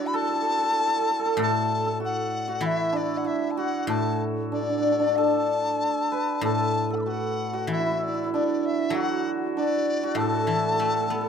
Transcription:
0.00 0.76 F#3 medium
0.00 2.92 D4 medium
0.00 2.61 E4 medium
0.00 1.99 F#4 medium
0.06 0.17 B5 medium
0.14 0.21 A4 loud
0.14 1.39 A5 loud
0.22 0.28 A4 medium
0.29 0.34 A4 medium
0.35 0.41 A4 medium
0.42 0.50 A4 medium
0.50 0.57 A4 medium
0.57 0.63 A4 medium
0.63 0.70 A4 medium
0.70 0.79 A4 medium
0.80 0.87 A4 soft
0.88 0.96 A4 medium
0.96 1.00 A4 medium
1.01 1.10 A4 medium
1.10 1.19 A4 medium
1.19 1.25 A4 medium
1.26 1.39 A4 medium
1.37 3.25 A2 medium
1.37 1.86 A4 loud
1.42 1.99 A5 loud
1.86 3.89 A4 medium
2.00 2.47 F#4 medium
2.05 2.67 F#5 loud
2.48 3.57 F#4 medium
2.61 4.51 E3 medium
2.61 3.24 E4 medium
2.66 2.98 E5 medium
2.92 4.51 D4 medium
2.97 3.19 D5 medium
3.17 3.28 F#5 medium
3.24 6.72 E4 medium
3.24 3.52 E5 medium
3.51 3.59 A5 medium
3.57 6.81 F#4 medium
3.57 3.88 F#5 medium
3.87 5.80 A2 medium
3.87 5.17 A4 medium
3.87 4.23 A5 medium
4.52 4.61 D4 medium
4.52 5.18 D5 medium
4.61 4.69 D4 soft
4.69 4.78 D4 soft
4.78 4.85 D4 medium
4.85 4.91 D4 medium
4.92 4.99 D4 soft
5.00 5.06 D4 medium
5.06 8.33 D4 soft
5.16 6.45 A4 medium
5.16 6.44 A5 loud
6.12 8.84 B4 medium
6.41 8.30 A2 medium
6.41 6.90 A4 medium
6.41 6.92 A5 loud
6.90 8.89 A4 medium
6.90 6.95 F#5 soft
6.94 6.98 E6 soft
6.98 7.04 B5 soft
6.98 7.00 D6 soft
7.05 7.53 F#4 medium
7.05 7.70 F#5 medium
7.05 7.10 A5 medium
7.53 8.94 F#4 medium
7.67 9.54 E3 medium
7.72 7.79 E4 medium
7.72 7.96 E5 medium
7.80 7.86 E4 medium
7.86 7.91 E4 medium
7.92 7.98 E4 medium
7.96 8.07 E4 medium
7.96 8.05 E5 medium
8.03 8.33 D5 medium
8.08 8.14 E4 medium
8.14 8.24 E4 medium
8.24 8.26 E4 medium
8.24 11.29 E4 soft
8.33 9.56 D4 medium
8.33 8.67 D5 medium
8.66 8.97 E5 medium
8.90 10.78 F#3 medium
8.90 10.19 A4 medium
8.94 10.03 F#4 medium
8.94 9.30 F#5 loud
9.57 11.29 D4 medium
9.57 10.18 D5 loud
10.03 11.29 F#4 medium
10.15 11.29 A2 medium
10.15 11.29 A5 loud
10.20 10.25 A4 medium
10.25 10.32 A4 medium
10.33 10.41 A4 medium
10.41 10.50 A4 medium
10.47 11.29 E3 soft
10.47 10.56 A4 medium
10.56 10.64 A4 medium
10.64 10.73 A4 medium
10.73 10.78 A4 soft
10.78 11.29 A3 medium
10.78 10.85 A4 soft
10.85 10.93 A4 medium
10.94 11.00 A4 medium
11.00 11.07 A4 medium
11.07 11.29 B3 medium
11.07 11.14 A4 medium
11.14 11.21 A4 medium
11.21 11.27 A4 medium

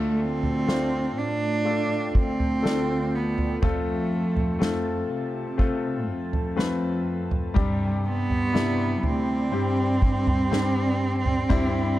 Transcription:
0.00 1.13 D2 medium
0.00 1.13 D3 soft
0.00 0.21 A3 medium
0.00 0.62 A3 medium
0.00 0.63 D4 medium
0.00 0.63 F4 medium
0.00 7.52 F4 medium
0.00 0.63 A4 medium
0.00 7.52 A4 medium
0.00 3.59 D5 medium
0.00 1.64 A5 medium
0.20 1.20 C4 loud
0.43 floor tom soft
0.67 1.61 A3 medium
0.67 1.61 D4 medium
0.67 1.61 F4 medium
0.67 1.62 C5 medium
0.67 snare medium
1.16 2.11 A2 medium
1.16 2.17 D4 loud
1.65 2.59 A3 medium
1.65 2.59 D4 medium
1.65 2.59 F4 medium
1.65 2.60 A4 medium
1.65 3.60 G5 medium
2.15 3.59 D2 medium
2.15 3.17 C4 loud
2.15 kick medium
2.40 floor tom soft
2.62 3.57 A3 medium
2.62 3.57 D4 medium
2.62 3.57 F4 medium
2.62 3.58 A4 medium
2.62 snare medium
3.15 3.64 B3 medium
3.38 floor tom medium
3.62 5.06 F2 medium
3.62 4.56 A3 medium
3.62 5.08 A3 medium
3.62 4.56 C4 medium
3.62 4.56 F4 medium
3.62 4.57 A4 medium
3.62 7.52 A5 medium
3.62 kick loud
3.62 floor tom medium
4.37 floor tom medium
4.59 5.54 A3 medium
4.59 5.54 C4 medium
4.59 5.54 F4 medium
4.59 5.54 A4 medium
4.59 snare loud
5.10 6.09 C3 medium
5.58 6.52 A3 medium
5.58 6.52 C4 medium
5.58 6.53 F4 medium
5.58 6.53 A4 medium
5.58 kick medium
6.08 7.52 F2 medium
6.33 floor tom medium
6.56 7.50 A3 medium
6.56 7.51 C4 medium
6.56 7.51 F4 medium
6.56 7.51 B4 medium
6.56 snare medium
7.31 floor tom medium
7.54 8.99 G2 medium
7.54 9.04 G2 loud
7.54 8.49 C3 medium
7.54 8.49 G3 medium
7.54 8.49 D4 medium
7.54 11.99 G4 medium
7.54 8.49 G4 medium
7.54 11.99 D5 medium
7.54 11.99 C6 medium
7.54 kick loud
7.54 floor tom loud
7.58 8.03 G3 medium
8.08 9.06 B3 loud
8.30 floor tom medium
8.53 9.47 C3 medium
8.53 9.47 G3 medium
8.53 9.48 D4 medium
8.53 9.48 E4 medium
8.53 snare loud
9.03 9.49 D2 medium
9.03 11.99 C4 loud
9.03 floor tom medium
9.52 11.46 G2 loud
9.52 10.46 G3 medium
9.52 10.46 C4 medium
9.52 10.46 D4 medium
9.52 10.47 G4 medium
10.02 kick medium
10.27 floor tom medium
10.51 11.45 G3 medium
10.51 11.45 C4 medium
10.51 11.45 D4 medium
10.51 11.45 G4 medium
10.51 snare medium
11.26 floor tom medium
11.49 11.99 G2 medium
11.49 11.99 G3 loud
11.49 11.99 C4 loud
11.49 11.99 D4 loud
11.49 11.99 E4 loud
11.49 kick medium
11.49 floor tom medium

